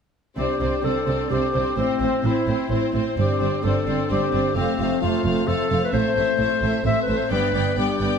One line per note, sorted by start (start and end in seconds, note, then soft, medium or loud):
0.37 0.45 C2 soft
0.37 0.45 C3 soft
0.37 0.60 C4 soft
0.37 3.14 C4 soft
0.37 1.74 D4 soft
0.37 0.81 G4 medium
0.37 0.60 C5 soft
0.37 0.59 D5 soft
0.61 0.69 C2 soft
0.61 0.69 C3 soft
0.61 0.83 C4 soft
0.61 0.83 C5 soft
0.61 0.84 D5 soft
0.83 0.92 C2 soft
0.83 0.91 C3 soft
0.83 1.06 C4 soft
0.83 1.30 A4 medium
0.83 1.05 C5 soft
0.83 1.06 D5 soft
1.07 1.16 C2 soft
1.07 1.15 C3 soft
1.07 1.29 C4 soft
1.07 1.30 C5 soft
1.07 1.29 D5 soft
1.30 1.39 C2 soft
1.30 1.38 C3 soft
1.30 1.53 C4 soft
1.30 1.76 G4 medium
1.30 1.53 C5 soft
1.30 1.53 D5 soft
1.54 1.62 C2 soft
1.54 1.62 C3 soft
1.54 1.77 C4 soft
1.54 1.76 C5 soft
1.54 1.77 D5 soft
1.77 1.85 A1 soft
1.77 1.85 A2 soft
1.77 2.27 C4 medium
1.77 2.00 C4 soft
1.77 3.15 E4 soft
1.77 2.00 C5 soft
2.00 2.08 A1 soft
2.00 2.09 A2 soft
2.00 2.23 C4 soft
2.00 2.21 C5 soft
2.00 2.24 C5 soft
2.23 2.32 A1 soft
2.23 2.31 A2 soft
2.23 2.47 C4 soft
2.23 2.95 E4 medium
2.23 2.46 C5 soft
2.23 2.47 C5 soft
2.47 2.55 A1 soft
2.47 2.55 A2 soft
2.47 2.70 C4 soft
2.47 2.70 C5 soft
2.47 2.71 C5 soft
2.70 2.78 A1 soft
2.70 2.78 A2 soft
2.70 2.93 C4 soft
2.70 2.93 C5 soft
2.70 2.94 C5 soft
2.94 3.02 A1 soft
2.94 3.02 A2 soft
2.94 3.17 C4 soft
2.94 3.17 C5 soft
3.17 3.25 G1 soft
3.17 3.26 G2 soft
3.17 3.40 C4 soft
3.17 4.54 C4 soft
3.17 4.53 D4 soft
3.17 3.65 G4 medium
3.17 3.39 C5 soft
3.17 3.40 D5 soft
3.40 3.49 G1 soft
3.40 3.49 G2 soft
3.40 3.63 C4 soft
3.40 3.63 C5 soft
3.40 3.63 D5 soft
3.64 3.72 G1 soft
3.64 3.72 G2 soft
3.64 3.86 C4 soft
3.64 4.10 A4 medium
3.64 3.85 C5 soft
3.64 3.87 D5 soft
3.87 3.95 G1 soft
3.87 3.95 G2 soft
3.87 4.08 C4 soft
3.87 4.09 C5 soft
3.87 4.08 D5 soft
4.09 4.18 G1 soft
4.09 4.18 G2 soft
4.09 4.31 C4 soft
4.09 4.55 G4 medium
4.09 4.32 C5 soft
4.09 4.31 D5 soft
4.32 4.41 G1 soft
4.32 4.42 G2 soft
4.32 4.55 C4 soft
4.32 4.55 C5 soft
4.32 4.55 D5 soft
4.55 4.64 F1 medium
4.55 4.64 F2 medium
4.55 4.78 A3 soft
4.55 5.90 A3 soft
4.55 5.91 C4 medium
4.55 5.01 C4 medium
4.55 4.78 C5 soft
4.55 4.78 F5 soft
4.79 4.87 F1 soft
4.79 4.87 F2 soft
4.79 5.00 A3 soft
4.79 5.02 C5 soft
4.79 5.01 F5 soft
5.01 5.11 F1 medium
5.01 5.11 F2 medium
5.01 5.22 A3 soft
5.01 5.49 F4 medium
5.01 5.25 C5 soft
5.01 5.24 F5 soft
5.24 5.34 F1 medium
5.24 5.33 F2 soft
5.24 5.46 A3 soft
5.24 5.47 C5 soft
5.24 5.47 F5 soft
5.47 5.56 F1 medium
5.47 5.56 F2 medium
5.47 5.70 A3 soft
5.47 5.82 A4 medium
5.47 5.70 C5 soft
5.47 5.69 F5 soft
5.70 5.79 F1 soft
5.70 5.79 F2 medium
5.70 5.92 A3 soft
5.70 5.93 C5 soft
5.70 5.93 F5 soft
5.84 5.93 B4 medium
5.92 6.02 A1 medium
5.92 6.01 A2 medium
5.92 6.80 A3 medium
5.92 6.15 A3 medium
5.92 6.80 C4 medium
5.92 6.83 C5 medium
5.92 6.14 C5 medium
5.92 6.15 E5 soft
6.16 6.24 A1 medium
6.16 6.24 A2 medium
6.16 6.38 A3 soft
6.16 6.38 C5 soft
6.16 6.37 E5 soft
6.39 6.48 A1 medium
6.39 6.47 A2 medium
6.39 6.61 A3 soft
6.39 6.62 C5 soft
6.39 6.61 E5 soft
6.62 6.70 A1 medium
6.62 6.70 A2 soft
6.62 6.84 A3 soft
6.62 6.84 C5 soft
6.62 6.84 E5 soft
6.85 6.93 A1 medium
6.85 6.93 A2 medium
6.85 7.30 A3 soft
6.85 7.08 A3 soft
6.85 7.30 C4 soft
6.85 7.07 C5 medium
6.85 7.07 E5 soft
6.85 7.01 E5 medium
7.02 7.18 B4 medium
7.08 7.17 A1 soft
7.08 7.16 A2 soft
7.08 7.31 A3 soft
7.08 7.31 C5 soft
7.08 7.31 E5 soft
7.17 7.31 C5 medium
7.31 7.40 G1 medium
7.31 7.39 G2 medium
7.31 7.64 G3 soft
7.31 7.53 B3 medium
7.31 7.64 D4 medium
7.31 7.77 B4 medium
7.31 7.52 D5 medium
7.31 7.52 G5 soft
7.53 7.62 G1 medium
7.53 7.62 G2 medium
7.53 7.77 B3 soft
7.53 7.76 D5 soft
7.53 7.75 G5 soft
7.77 7.86 G1 medium
7.77 7.86 G2 medium
7.77 8.19 G3 medium
7.77 8.00 B3 soft
7.77 8.19 D4 medium
7.77 8.19 G4 medium
7.77 7.99 D5 soft
7.77 7.99 G5 soft
8.00 8.08 G1 soft
8.00 8.08 G2 soft
8.00 8.19 B3 soft
8.00 8.19 D5 soft
8.00 8.19 G5 soft